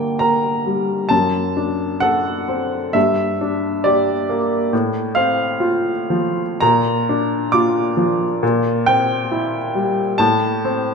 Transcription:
Already playing: D3 G3 A#3 A#4 G5
0.19 A#4 A#5
0.66 G3
1.09 F#2 A5
1.57 D4
2.00 A4 F#5
2.48 C4
2.93 G2 E5
3.41 D4
3.84 G4 D5
4.29 A#3
4.73 A2
5.15 C4 F5
5.60 F4
6.10 F3
6.61 A#2 A#5
7.09 D4
7.52 F4 D6
7.97 F3
8.43 A#2
8.86 C4 G5
9.31 E4
9.75 G3
10.18 A2 A5
10.65 C4

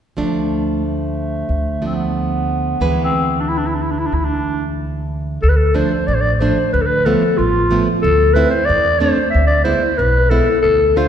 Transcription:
0.17 D2 F3 A3 D4
0.77 A3
1.49 D2
1.82 F3 A3 D4
1.86 C4
1.94 B3
2.80 D2 E3 G#3 B4
3.04 C4
3.41 D4
3.49 E4
3.58 D4
3.67 E4
3.75 D4
3.82 E4
3.91 D4
3.99 E4
4.06 D4
4.12 D2 E4
4.25 D4
5.42 D2 A4
5.49 B4
5.57 A4
5.74 F3 A3 D4 C5
6.07 A1 D5
6.15 C5
6.21 D5
6.33 D5
6.40 F3 A3 D4 C5
6.73 D2 B4
6.81 A4
6.86 B4
7.06 F3 A3 B3 A4
7.38 A1 F4
7.71 F3 A3 B3
8.02 D2 A4
8.34 A3 C4 E4 B4
8.50 C5
8.65 E2 D5
8.99 A3 C4 D4 C5
9.30 D2 E5
9.47 D5
9.64 G#3 B3 E4 C5
9.98 B1 B4
10.30 G#3 B3 E4 A4
10.62 D2 A4
10.96 A3 D4 F4 C5

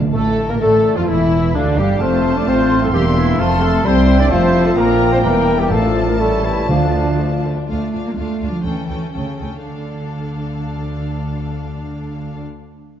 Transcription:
Already playing: D3
0.02 D3
0.13 A1 A2 D3 A3 A4
0.49 A#2 A#3 A#4
0.61 A1 A2 A3 A4 D5
0.96 F2 F3 F4
1.08 E1 E2 E3 E4 E5
1.54 D2 D3 D4 F5
1.78 G1 G2 G3 G4
2.00 F1 F2 A3 C4 F4 C5 F5 A5
2.36 D4 D5
2.47 A1 A2 A3 C4 C5 C6
2.82 A3 A4
2.93 E1 E2 G3 A#3 D4 G4 E5 C6
3.17 E3 E4
3.39 F1 F2 F3 A3 C4 F4 A4 F5 A5 C6
3.62 A3 A4
3.85 C2 G3 C4 C5 E5 G5 C6
3.96 C4
4.08 E4
4.19 C4 D4 D5
4.30 F1 F2 F3 A3 C4 C5 F5 A5
4.42 C4
4.54 E4
4.65 A3 F4 A4
4.77 A#1 A#2 A#3 A#4 D5 G5 A#5
4.89 D4
5.01 A#3
5.12 C4 D4 C5
5.23 E1 E2 E3 G3 A#3 A#4 G5
5.36 A#3
5.48 D4
5.58 G3 A#3 G4
5.71 A1 A2 F3 A3 A4 D5 F5 A5
5.83 D4
5.95 A3
6.06 A#3 D4 A#4
6.18 G3 A3 A4 C#5 E5
6.32 A3
6.43 E3 C#4 E4
6.57 A3
6.69 D2 D3 F3 A3 D4 D5 F5
6.83 D4
6.96 A3
7.08 D4
7.20 A3
7.32 D4
7.45 A3
7.58 D4
7.69 D2 A3 D4 F4 F5
7.94 D2 D4 F4 F5
8.06 A#3
8.17 D2 A3 D4 F4 F5
8.41 D2 D4 F4 F5
8.53 F3
8.64 D2 E3 C#4 A4 G5
8.88 D2 C#4 A4 G5
9.14 D2 C#3 C#4 A4 G5
9.39 D2 C#4 A4 G5
9.65 D2 D3 D4 A4 F5

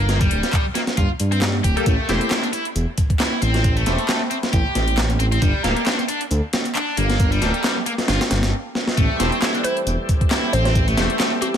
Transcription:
Already playing: G1 A#3
0.09 snare, closed hi-hat
0.21 G3, kick, closed hi-hat
0.31 D1, closed hi-hat
0.43 snare, closed hi-hat
0.53 kick, clap, closed hi-hat
0.75 A#3, snare, closed hi-hat
0.87 snare, closed hi-hat
0.97 G2 F4, kick, closed hi-hat
1.20 G2, closed hi-hat
1.32 C4, closed hi-hat
1.42 snare, clap, closed hi-hat
1.64 D1 G4, kick, closed hi-hat
1.76 G3 A#3 G4 A4 G5, closed hi-hat
1.86 A1 A3, kick, closed hi-hat
2.08 E1 A3 C4 E4 G4 C5, snare, closed hi-hat
2.20 C4, closed hi-hat
2.30 E4, snare, clap, closed hi-hat
2.43 D4, closed hi-hat
2.53 E4, closed hi-hat
2.65 closed hi-hat
2.75 E1, closed hi-hat
2.98 kick, closed hi-hat
3.10 kick, closed hi-hat
3.19 E4, snare, clap, closed hi-hat
3.41 A1 C4, closed hi-hat
3.54 snare, closed hi-hat
3.64 kick, closed hi-hat
3.76 A3, closed hi-hat
3.86 E1 A3 E4 G4 C5, snare, closed hi-hat
3.98 closed hi-hat
4.09 snare, clap, closed hi-hat
4.31 C4, closed hi-hat
4.43 snare, closed hi-hat
4.53 A1 G4, kick, closed hi-hat
4.75 A1, snare, closed hi-hat
4.88 closed hi-hat
4.98 snare, clap, closed hi-hat
5.10 closed hi-hat
5.20 A1 C4, closed hi-hat
5.32 C4, closed hi-hat
5.42 G1 G3, kick, closed hi-hat
5.64 D1 A#3 G4 A4 F5, snare, closed hi-hat
5.76 A#3, closed hi-hat
5.87 D4, snare, clap, closed hi-hat
5.99 C4, closed hi-hat
6.08 D4, closed hi-hat
6.21 closed hi-hat
6.31 D2, closed hi-hat
6.53 snare, closed hi-hat
6.65 closed hi-hat
6.75 D4, clap, closed hi-hat
6.97 G1 A#3, closed hi-hat
7.10 snare, closed hi-hat
7.20 kick, closed hi-hat
7.32 G3, closed hi-hat
7.41 D1 A#3 G4 A4 F5, snare, closed hi-hat
7.54 closed hi-hat
7.64 snare, clap, closed hi-hat
7.86 A#3, closed hi-hat
7.98 snare, closed hi-hat
8.08 G1 F4, snare, closed hi-hat
8.21 snare, closed hi-hat
8.31 G1, snare, closed hi-hat
8.43 snare, closed hi-hat
8.75 snare
8.87 snare
8.97 A1 E3 G3 A3 C4 G4, kick, closed hi-hat
9.20 E1 A3 C4 E4 G4 C5, snare, closed hi-hat
9.31 C4, closed hi-hat
9.42 E4, snare, clap, closed hi-hat
9.54 D4, closed hi-hat
9.64 E4 C5, closed hi-hat
9.77 closed hi-hat
9.86 E1, closed hi-hat
10.09 kick, closed hi-hat
10.21 kick, closed hi-hat
10.31 E4, snare, clap, closed hi-hat
10.53 A1 C4 C5, closed hi-hat
10.65 C5, snare, closed hi-hat
10.75 kick, closed hi-hat
10.87 A3, closed hi-hat
10.97 E1 A3 E4 G4 C5, snare, closed hi-hat
11.10 closed hi-hat
11.20 snare, clap, closed hi-hat
11.41 C4 G4, closed hi-hat

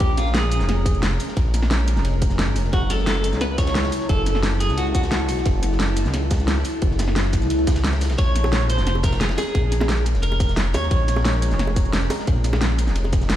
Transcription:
Already playing: G#3 C#4 G4 A#4
0.00 A#1, kick, closed hi-hat, ride
0.17 F4, snare, closed hi-hat, ride, shaker
0.26 snare
0.34 G#4, snare, closed hi-hat, ride
0.43 snare
0.52 closed hi-hat, ride, shaker
0.60 F1, snare, shaker
0.69 snare, closed hi-hat, ride
0.86 kick, closed hi-hat, ride, shaker
0.94 shaker
1.03 snare, closed hi-hat, ride
1.11 snare
1.20 open hi-hat, ride, shaker
1.28 snare
1.36 A#1, kick, closed hi-hat, ride
1.54 snare, closed hi-hat, ride, shaker
1.62 snare
1.71 snare, closed hi-hat, ride
1.79 snare
1.88 closed hi-hat, ride, shaker
1.96 F1, snare, shaker
2.05 closed hi-hat, ride
2.13 ride
2.22 kick, closed hi-hat, ride, shaker
2.30 snare, shaker
2.39 snare, closed hi-hat, ride
2.47 G#1
2.56 F1, open hi-hat, ride, shaker
2.64 snare
2.73 F#1 F#3 E4 F#4 A4, kick, closed hi-hat, ride
2.90 A4, snare, closed hi-hat, ride, shaker
2.98 snare
3.06 snare, closed hi-hat, ride
3.16 snare
3.24 closed hi-hat, ride, shaker
3.33 C#2, snare, shaker
3.41 B4, snare, closed hi-hat, ride
3.58 C#5, kick, snare, closed hi-hat, ride, shaker
3.67 snare, ride, shaker
3.75 snare, closed hi-hat, ride
3.83 snare, ride
3.92 open hi-hat, ride, shaker
4.00 snare
4.09 F#1 A4, kick, closed hi-hat, ride
4.26 snare, closed hi-hat, ride, shaker
4.35 snare
4.43 snare, closed hi-hat, ride
4.53 snare
4.60 G#4, closed hi-hat, ride, shaker
4.69 C#2, snare, shaker
4.77 F#4, closed hi-hat, ride
4.87 ride
4.95 F#4, kick, closed hi-hat, ride, shaker
5.03 snare, shaker
5.11 snare, closed hi-hat, ride
5.29 B1, open hi-hat, ride, shaker
5.37 snare
5.46 F#1, kick, closed hi-hat, ride
5.63 snare, closed hi-hat, ride, shaker
5.71 snare
5.79 snare, closed hi-hat, ride
5.89 snare
5.96 closed hi-hat, ride, shaker
6.05 C#2, snare, shaker
6.14 snare, closed hi-hat, ride
6.31 kick, snare, closed hi-hat, ride, shaker
6.39 snare, shaker
6.48 snare, closed hi-hat, ride
6.56 snare
6.65 open hi-hat, ride, shaker
6.82 F#1, kick, closed hi-hat, ride
6.91 snare
6.99 snare, closed hi-hat, ride, shaker
7.07 snare
7.16 snare, closed hi-hat, ride
7.25 snare
7.33 kick, snare, closed hi-hat, ride, shaker
7.41 C#2, snare, shaker
7.50 closed hi-hat, ride
7.59 ride
7.67 kick, snare, closed hi-hat, ride, shaker
7.75 snare, ride, shaker
7.84 snare, closed hi-hat, ride
7.93 snare, ride
8.01 snare, open hi-hat, ride, shaker
8.10 B1, snare, ride
8.18 A#1 G#3 C#4 A#4 C#5, kick, closed hi-hat, ride
8.35 snare, closed hi-hat, ride, shaker
8.44 snare, high bongo
8.53 snare, closed hi-hat, ride
8.60 snare
8.70 C5, closed hi-hat, ride, shaker
8.78 F1, snare, shaker
8.86 snare, closed hi-hat, ride
8.95 high bongo
9.03 A#4, kick, snare, closed hi-hat, ride, shaker
9.12 snare, ride, shaker
9.21 G#4, snare, closed hi-hat, ride
9.29 snare, ride
9.37 G#4, open hi-hat, ride, high bongo, shaker
9.46 snare
9.55 A#1, kick, closed hi-hat, ride
9.72 snare, closed hi-hat, ride, shaker
9.80 snare, high bongo
9.88 snare, closed hi-hat, ride
9.97 snare
10.06 closed hi-hat, ride, shaker
10.14 F1, snare, shaker
10.22 A#4, closed hi-hat, ride
10.32 ride, high bongo
10.40 kick, closed hi-hat, ride, shaker
10.49 snare, shaker
10.56 snare, closed hi-hat, ride
10.74 D#2 C#5, open hi-hat, ride, high bongo, shaker
10.82 snare
10.91 A#1, kick, closed hi-hat, ride
11.08 snare, closed hi-hat, ride, shaker
11.16 snare, high bongo
11.25 snare, closed hi-hat, ride
11.34 snare
11.42 closed hi-hat, ride, shaker
11.51 F1, snare, shaker
11.59 snare, closed hi-hat, ride
11.67 high bongo
11.76 kick, closed hi-hat, ride, shaker
11.85 shaker
11.93 snare, closed hi-hat, ride
12.02 snare
12.10 open hi-hat, ride, high bongo, shaker
12.19 snare
12.27 A#1, kick, closed hi-hat, ride
12.44 snare, closed hi-hat, ride, shaker
12.53 snare, high bongo
12.61 snare, closed hi-hat, ride
12.70 snare
12.78 closed hi-hat, ride, shaker
12.87 F1, snare, shaker
12.96 closed hi-hat, ride
13.04 ride, high bongo
13.13 kick, closed hi-hat, ride, shaker
13.21 snare, shaker
13.29 snare, closed hi-hat, ride

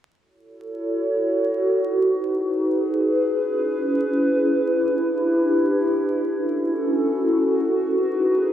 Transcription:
0.20 E4 F#4 A4 C#5
1.68 D#4 G#4 B4
3.17 C#4 E4
4.65 D4 G4
6.13 C#4 F#4 A4
7.61 D#4 G#4 B4

